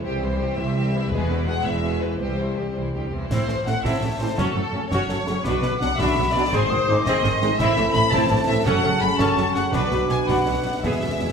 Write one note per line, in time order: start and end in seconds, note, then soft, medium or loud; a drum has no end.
0.00 0.51 C2 medium
0.00 1.08 E3 soft
0.00 0.20 G3 medium
0.00 0.20 C4 soft
0.00 0.56 C5 medium
0.04 0.51 C2 medium
0.04 1.12 G3 medium
0.04 0.21 G4 medium
0.22 0.40 E3 soft
0.22 0.37 G3 soft
0.22 0.40 E4 soft
0.22 0.40 C5 medium
0.39 0.57 G3 soft
0.39 0.57 C4 medium
0.39 0.58 G4 medium
0.57 1.05 C2 medium
0.57 0.75 E3 medium
0.57 0.74 G3 medium
0.57 0.76 E4 soft
0.57 0.76 C5 medium
0.57 1.11 E5 medium
0.75 0.92 G3 soft
0.75 0.91 C4 medium
0.75 0.93 G4 medium
0.94 1.11 E3 soft
0.94 1.12 G3 medium
0.94 1.12 E4 medium
0.94 1.12 C5 medium
1.10 1.59 E1 medium
1.10 1.62 E2 medium
1.10 1.59 E2 medium
1.10 3.08 E3 medium
1.10 1.28 G#3 medium
1.10 2.18 G#3 medium
1.10 1.28 B3 medium
1.10 1.28 G#4 medium
1.10 1.47 B4 medium
1.28 1.47 E3 medium
1.28 1.47 B3 medium
1.28 1.48 E4 medium
1.28 1.48 B4 medium
1.46 1.65 G#3 medium
1.46 1.66 B3 medium
1.46 1.66 G#4 medium
1.46 1.65 F#5 medium
1.65 2.14 E1 medium
1.65 2.14 E2 medium
1.65 1.83 E3 medium
1.65 1.83 B3 medium
1.65 1.84 E4 soft
1.65 1.84 B4 medium
1.65 2.02 E5 medium
1.82 2.00 G#3 medium
1.82 2.02 B3 soft
1.82 2.02 G#4 soft
2.02 2.20 E3 soft
2.02 2.21 B3 soft
2.02 2.21 E4 soft
2.02 2.20 B4 medium
2.02 2.21 B4 soft
2.20 2.69 C2 medium
2.20 2.37 G3 soft
2.20 3.12 G3 soft
2.20 2.37 C4 soft
2.20 2.39 G4 medium
2.20 2.74 C5 medium
2.39 2.57 E3 soft
2.39 2.56 G3 soft
2.39 2.58 E4 soft
2.39 2.58 C5 soft
2.57 2.76 G3 soft
2.57 2.76 C4 soft
2.57 2.76 G4 soft
2.74 2.92 C2 soft
2.74 3.24 C2 soft
2.74 2.94 E3 soft
2.74 2.94 G3 soft
2.74 2.94 E4 soft
2.74 2.94 C5 soft
2.92 3.11 D2 soft
2.92 3.11 G3 soft
2.92 3.11 C4 soft
2.92 3.11 G4 soft
3.10 3.29 E2 soft
3.10 3.30 E3 soft
3.10 3.30 G3 soft
3.10 3.31 E4 soft
3.10 3.29 C5 soft
3.29 3.37 A1 medium
3.29 3.36 A2 medium
3.29 3.47 C4 medium
3.29 3.47 E4 medium
3.29 3.63 C5 medium
3.29 3.64 C5 medium
3.29 concert bass drum medium
3.29 snare medium
3.29 crash soft
3.47 3.55 A1 soft
3.47 3.56 A2 medium
3.47 3.55 E3 medium
3.47 3.55 A3 soft
3.47 snare soft
3.65 3.74 A1 medium
3.65 3.72 A2 medium
3.65 3.73 A2 medium
3.65 3.72 E3 soft
3.65 3.73 A3 soft
3.65 3.72 A3 medium
3.65 3.72 C4 medium
3.65 3.73 C4 medium
3.65 3.83 F#5 medium
3.65 3.84 F#5 medium
3.65 snare medium
3.83 3.91 A1 medium
3.83 3.91 A2 medium
3.83 4.01 C4 medium
3.83 4.01 E4 medium
3.83 4.20 E5 medium
3.83 4.88 A5 medium
3.83 concert bass drum medium
3.83 snare medium
4.01 4.09 A1 soft
4.01 4.08 A2 medium
4.01 4.09 E3 medium
4.01 4.09 A3 medium
4.19 4.27 A1 soft
4.19 4.26 A2 medium
4.19 4.27 A2 soft
4.19 4.26 E3 medium
4.19 4.27 A3 medium
4.19 4.26 A3 soft
4.19 4.27 C4 soft
4.19 4.26 C4 medium
4.19 4.37 C5 medium
4.19 4.38 C5 medium
4.37 4.45 F#1 medium
4.37 4.45 F#2 medium
4.37 4.54 C#4 medium
4.37 4.54 F#4 medium
4.37 4.91 A4 medium
4.37 concert bass drum medium
4.37 snare medium
4.55 4.63 F#1 medium
4.55 4.63 F#2 medium
4.55 4.62 F#3 medium
4.55 4.62 A3 medium
4.73 4.81 F#1 medium
4.73 4.80 F#2 medium
4.73 4.80 C#3 medium
4.73 4.79 F#3 medium
4.73 4.79 A3 medium
4.73 4.81 A3 soft
4.73 4.80 C#4 medium
4.90 4.99 F#1 medium
4.90 4.98 F#2 medium
4.90 5.09 C#4 medium
4.90 5.09 F#4 medium
4.90 5.44 C#5 medium
4.90 4.97 C#6 medium
4.90 concert bass drum medium
4.90 snare medium
5.09 5.17 F#1 medium
5.09 5.17 F#2 medium
5.09 5.17 F#3 medium
5.09 5.18 A3 medium
5.09 5.29 A5 medium
5.09 snare medium
5.24 5.35 F#1 medium
5.24 5.35 F#2 medium
5.24 5.33 C#3 medium
5.24 5.33 F#3 medium
5.24 5.32 A3 medium
5.24 5.32 C#4 medium
5.24 5.44 C#6 medium
5.24 snare soft
5.29 5.36 A3 medium
5.29 5.36 C#4 medium
5.44 5.52 B1 medium
5.44 5.52 B2 medium
5.44 5.96 B2 medium
5.44 5.63 D4 medium
5.44 5.63 F#4 medium
5.44 5.80 B4 medium
5.44 5.81 B4 medium
5.44 6.01 D6 medium
5.44 concert bass drum medium
5.44 snare medium
5.63 5.71 B1 medium
5.63 5.70 B2 medium
5.63 5.72 F#3 medium
5.63 5.71 B3 medium
5.63 snare soft
5.80 5.89 B1 medium
5.80 5.88 B2 medium
5.80 5.88 F#3 medium
5.80 5.89 B3 medium
5.80 5.88 D4 medium
5.80 5.89 D4 medium
5.80 5.98 F#5 loud
5.80 5.99 F#5 medium
5.80 snare medium
5.97 6.07 B1 medium
5.97 6.05 B2 medium
5.97 6.16 D4 medium
5.97 6.16 F#4 medium
5.97 6.34 E5 loud
5.97 6.34 E5 medium
5.97 6.52 B5 medium
5.97 concert bass drum medium
5.97 snare medium
6.17 6.24 B1 medium
6.17 6.24 B2 medium
6.17 6.26 F#3 medium
6.17 6.26 B3 medium
6.33 6.42 B1 medium
6.33 6.41 B2 medium
6.33 6.42 F#3 medium
6.33 6.43 B3 medium
6.33 6.42 D4 medium
6.33 6.43 D4 medium
6.33 6.52 D5 loud
6.33 6.53 D5 medium
6.50 6.60 G#1 loud
6.50 6.59 G#2 medium
6.50 6.70 C4 medium
6.50 6.70 G#4 medium
6.50 7.05 C5 loud
6.50 7.07 C5 loud
6.50 6.72 C6 medium
6.50 concert bass drum medium
6.50 snare medium
6.69 6.78 G#1 medium
6.69 6.77 G#2 medium
6.69 6.79 D#3 medium
6.69 6.79 C4 medium
6.69 6.91 D#6 loud
6.88 6.96 G#1 medium
6.88 6.95 G#2 medium
6.88 6.95 D#3 medium
6.88 6.95 G#3 medium
6.88 6.97 G#3 medium
6.88 6.96 C4 medium
6.88 6.96 D#4 medium
6.88 6.97 D#4 medium
6.88 7.08 D6 medium
7.05 7.14 G#1 medium
7.05 7.12 G#2 medium
7.05 7.22 C4 loud
7.05 7.23 G#4 medium
7.05 7.58 D#5 medium
7.05 7.58 D#5 loud
7.05 7.59 C6 medium
7.05 concert bass drum medium
7.05 snare medium
7.23 7.32 G#1 medium
7.23 7.30 G#2 medium
7.23 7.31 D#3 medium
7.23 7.31 C4 medium
7.23 snare medium
7.41 7.50 G#1 medium
7.41 7.48 G#2 medium
7.41 7.48 D#3 medium
7.41 7.48 G#3 medium
7.41 7.49 G#3 medium
7.41 7.49 C4 medium
7.41 7.49 D#4 medium
7.41 7.50 D#4 medium
7.41 snare medium
7.57 7.67 A1 medium
7.57 7.67 A2 loud
7.57 8.63 E3 medium
7.57 8.63 A3 medium
7.57 8.62 C4 medium
7.57 7.77 C4 medium
7.57 7.77 E4 medium
7.57 9.70 A4 medium
7.57 7.94 E5 loud
7.57 7.95 E5 loud
7.57 8.11 B5 medium
7.57 concert bass drum medium
7.57 snare medium
7.57 crash soft
7.76 7.85 A1 medium
7.76 7.85 A2 medium
7.76 7.84 E3 medium
7.76 7.85 A3 medium
7.76 snare medium
7.93 8.02 A1 medium
7.93 8.03 A2 medium
7.93 8.02 A3 medium
7.93 8.01 C4 medium
7.93 8.12 B5 loud
7.93 8.13 B5 loud
7.93 snare medium
8.11 8.20 A1 medium
8.11 8.20 A2 medium
8.11 8.30 C4 medium
8.11 8.30 E4 medium
8.11 9.19 A5 loud
8.11 8.49 A5 loud
8.11 8.49 A5 medium
8.11 concert bass drum medium
8.11 snare medium
8.29 8.38 A1 medium
8.29 8.37 A2 medium
8.29 8.37 E3 medium
8.29 8.37 A3 medium
8.47 8.56 A1 medium
8.47 8.56 A2 medium
8.47 8.55 A3 medium
8.47 8.55 C4 medium
8.47 8.56 E5 loud
8.47 8.67 E5 medium
8.65 8.73 F#1 loud
8.65 8.74 F#2 medium
8.65 9.72 C#3 medium
8.65 10.84 F#3 medium
8.65 8.82 C#4 loud
8.65 9.74 C#4 medium
8.65 8.83 A4 medium
8.65 9.01 F#5 loud
8.65 9.02 F#5 loud
8.65 concert bass drum medium
8.65 snare medium
8.83 8.91 F#1 medium
8.83 8.91 F#2 medium
8.83 8.91 F#3 medium
8.83 8.91 C#4 medium
9.01 9.09 F#1 medium
9.01 9.09 F#2 medium
9.01 9.09 A3 medium
9.01 9.09 F#4 medium
9.01 9.20 B5 loud
9.01 9.20 B5 medium
9.18 9.27 F#1 medium
9.18 9.27 F#2 medium
9.18 9.36 C#4 medium
9.18 9.36 A4 medium
9.18 9.56 A5 loud
9.18 9.56 A5 medium
9.18 9.72 C#6 medium
9.18 concert bass drum medium
9.18 snare medium
9.36 9.45 F#1 medium
9.36 9.44 F#2 medium
9.36 9.45 F#3 medium
9.36 9.45 C#4 medium
9.36 snare medium
9.54 9.63 F#1 medium
9.54 9.62 F#2 medium
9.54 9.62 A3 medium
9.54 9.62 F#4 medium
9.54 9.74 F#5 medium
9.54 9.63 F#5 medium
9.54 snare medium
9.72 9.81 B1 medium
9.72 10.24 B2 medium
9.72 9.81 B2 medium
9.72 11.32 B2 medium
9.72 9.91 D4 medium
9.72 10.84 D4 medium
9.72 9.91 F#4 medium
9.72 10.11 B4 loud
9.72 10.10 B4 loud
9.72 11.32 B4 medium
9.72 10.26 D6 medium
9.72 concert bass drum medium
9.72 snare medium
9.91 9.99 B1 medium
9.91 9.99 B2 medium
9.91 10.00 F#3 medium
9.91 10.00 B3 medium
9.91 snare soft
10.09 10.17 B1 medium
10.09 10.16 B2 medium
10.09 10.18 B3 medium
10.09 10.18 D4 soft
10.09 10.29 G#5 loud
10.09 10.18 G#5 medium
10.09 snare medium
10.26 10.35 B1 medium
10.26 10.35 B2 medium
10.26 10.46 D4 medium
10.26 10.46 F#4 medium
10.26 10.84 F#5 medium
10.26 10.83 F#5 medium
10.26 10.63 B5 medium
10.26 concert bass drum medium
10.26 snare medium
10.45 10.53 B1 medium
10.45 10.54 B2 soft
10.45 10.54 F#3 medium
10.45 10.55 B3 medium
10.64 10.72 B1 soft
10.64 10.71 B2 soft
10.64 10.72 B3 soft
10.64 10.72 D4 soft
10.83 10.90 E1 medium
10.83 10.91 E2 medium
10.83 10.91 E2 soft
10.83 11.32 G#3 medium
10.83 11.32 B3 medium
10.83 11.02 B3 medium
10.83 11.02 G#4 medium
10.83 11.32 E5 medium
10.83 11.32 G#5 medium
10.83 concert bass drum medium
10.83 snare medium
10.92 10.99 E2 soft
11.00 11.09 E1 soft
11.00 11.07 E2 soft
11.00 11.10 E2 medium
11.04 11.12 E3 medium
11.04 11.11 B3 soft
11.08 11.15 E2 soft
11.16 11.22 E2 soft
11.21 11.28 E1 medium
11.21 11.28 E2 soft
11.21 11.29 E2 soft
11.21 11.29 G#3 soft
11.21 11.29 E4 soft